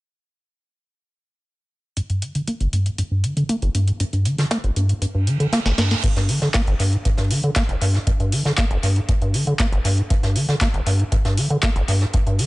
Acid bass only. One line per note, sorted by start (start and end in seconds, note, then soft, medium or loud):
1.97 2.01 G2 medium
2.10 2.24 G2 medium
2.22 2.33 D3 medium
2.35 2.42 D3 medium
2.48 2.55 A#3 medium
2.60 2.67 G1 loud
2.73 2.87 G2 medium
2.86 2.90 G#2 medium
2.98 3.03 G2 medium
3.11 3.25 G2 medium
3.24 3.35 D3 medium
3.37 3.44 D3 medium
3.49 3.56 A#3 loud
3.62 3.69 G1 loud
3.75 3.89 G2 medium
3.88 3.92 G#2 medium
4.00 4.04 G2 medium
4.13 4.27 G2 medium
4.25 4.36 D3 medium
4.38 4.45 D3 medium
4.51 4.58 A#3 medium
4.64 4.71 G1 loud
4.76 4.91 G2 medium
4.89 4.93 G#2 medium
5.02 5.06 G2 medium
5.15 5.29 G2 medium
5.27 5.38 D3 medium
5.40 5.47 D3 medium
5.53 5.60 A#3 loud
5.66 5.72 G1 loud
5.78 5.92 G2 medium
5.91 5.95 G#2 medium
6.03 6.08 G2 medium
6.16 6.30 G2 medium
6.29 6.40 D3 medium
6.42 6.49 D3 medium
6.54 6.62 A#3 loud
6.67 6.74 G1 loud
6.80 6.94 G2 medium
6.93 6.97 G#2 medium
7.05 7.10 G2 medium
7.18 7.32 G2 medium
7.31 7.41 D3 medium
7.44 7.51 D3 medium
7.56 7.63 A#3 loud
7.69 7.76 G1 loud
7.82 7.96 G2 medium
7.95 7.99 G#2 medium
8.07 8.11 G2 medium
8.20 8.34 G2 medium
8.32 8.43 D3 medium
8.45 8.52 D3 medium
8.58 8.65 A#3 loud
8.71 8.78 G1 loud
8.83 8.98 G2 medium
8.96 9.00 G#2 medium
9.09 9.13 G2 medium
9.22 9.36 G2 medium
9.34 9.45 D3 medium
9.47 9.54 D3 medium
9.59 9.67 A#3 loud
9.72 9.79 G1 loud
9.85 9.99 G2 medium
9.98 10.02 G#2 medium
10.10 10.15 G2 medium
10.23 10.37 G2 medium
10.36 10.46 D3 medium
10.49 10.56 D3 medium
10.61 10.68 A#3 loud
10.74 10.81 G1 loud
10.86 11.01 G2 medium
11.00 11.04 G#2 medium
11.12 11.16 G2 medium
11.25 11.39 G2 medium
11.38 11.48 D3 medium
11.50 11.57 D3 medium
11.63 11.70 A#3 loud
11.76 11.83 G1 loud
11.88 12.03 G2 medium
12.01 12.05 G#2 medium
12.14 12.18 G2 medium
12.27 12.41 G2 medium
12.39 12.46 D3 medium